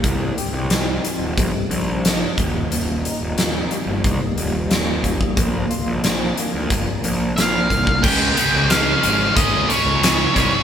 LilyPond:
<<
  \new Staff \with { instrumentName = "Lead electric guitar" } { \time 4/4 \key ees \major \tempo 4 = 90 r1 | r1 | r2. f''4 | g''4 f''4 ees''8 des''4. | }
  \new Staff \with { instrumentName = "Clean electric guitar" } { \time 4/4 \key ees \major c8 g'8 ees'8 c'8 g8 c'8 ees'8 ees,8 | ees,8 ees'8 bes8 g8 ees8 g8 bes8 g8 | bes,8 f'8 d'8 bes8 f8 bes8 d'8 bes8 | r1 | }
  \new Staff \with { instrumentName = "Distorted electric guitar" } { \clef bass \time 4/4 \key ees \major r1 | r1 | r1 | <des aes des'>8 <des aes des'>8 <des aes des'>8 <des aes des'>8 <des aes des'>8 <des aes des'>8 <des aes des'>8 <des aes des'>8 | }
  \new Staff \with { instrumentName = "Distorted electric guitar" } { \clef bass \time 4/4 \key ees \major r1 | r1 | r1 | <des aes des'>8 <des aes des'>8 <des aes des'>8 <des aes des'>8 <des aes des'>8 <des aes des'>8 <des aes des'>8 <des aes des'>8 | }
  \new Staff \with { instrumentName = "Picked electric bass" } { \clef bass \time 4/4 \key ees \major c,8 r16 c,16 c,8 r16 ees,,16 bes,,16 r16 bes,,4 ees,,8~ | ees,,8. ees,,16 ees,,8 r16 g,,16 c,16 r16 ees,,4. | bes,,8 r16 bes,,16 bes,,8 r16 d,16 g,,16 r16 bes,,8 bes,,8 c,8 | des,8 r16 des,8. aes,,8 aes,,8 r16 des,8. c,16 r16 | }
  \new DrumStaff \with { instrumentName = "Drums" } \drummode { \time 4/4 <hh bd>8 hh8 <hh sn>8 hh8 <hh bd>8 hh8 <hh sn>8 <hh bd>8 | hh8 hh8 <hh sn>8 hh8 <hh bd>8 hh8 <hh sn>8 <hh bd>16 bd16 | <hh bd>8 hh8 <hh sn>8 hh8 <hh bd>8 hh8 <hh sn>8 <hh bd>16 bd16 | <cymc bd>8 hh8 <hh sn>8 hh8 <hh bd>8 hh8 <hh sn>8 <hh bd>8 | }
>>